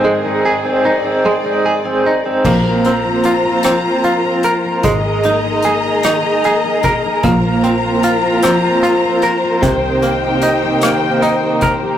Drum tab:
CC |------|x-----|------|------|
HH |------|-xxxxx|xxxxxx|xxxxxx|
SD |------|---r--|---r--|---r--|
BD |------|o-----|o----o|o-----|

CC |------|
HH |xxxxxx|
SD |---r--|
BD |o----o|